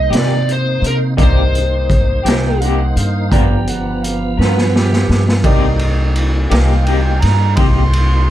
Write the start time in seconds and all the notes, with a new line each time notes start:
Already playing: A#3 D#4 G4 C5 D#5
0.10 C3 A#3 D#4 G4, closed hi-hat
0.15 D5, snare
0.49 C5, closed hi-hat
0.82 C3, closed hi-hat
0.87 A#4
1.17 C2 C3 A#3 D#4 G4 A#4 C5 D5, kick, closed hi-hat
1.23 C5
1.55 closed hi-hat
1.90 kick, closed hi-hat
2.24 C2 A#3 D#4 G4 G5, closed hi-hat
2.28 snare
2.61 C3 A#3 D#4 G4 F#5, closed hi-hat
2.96 G2 F5, closed hi-hat
3.30 G1 F3 G3 B3 F4 G4 A#4 B4 D5 G5 A#5, kick, closed hi-hat
3.67 F#5, closed hi-hat
4.04 F5, closed hi-hat
4.37 G2 B3 F4 A#4 B4, snare
4.58 snare
4.75 G4, snare
4.93 snare
5.09 G2, snare
5.29 snare
5.43 C2 C3 A#3 D#4 G4 A#4 C5 D5, kick, ride
5.79 ride
6.15 ride
6.50 C2 A#3 D#4 G4 A#4 D5 F5, snare, ride
6.85 C3 A#3 D#4 G4 G5, ride
7.21 G2 A#5, snare, ride
7.56 C2 C3 A#3 D#4 G4 D#5 G5 C6, kick, ride
7.93 ride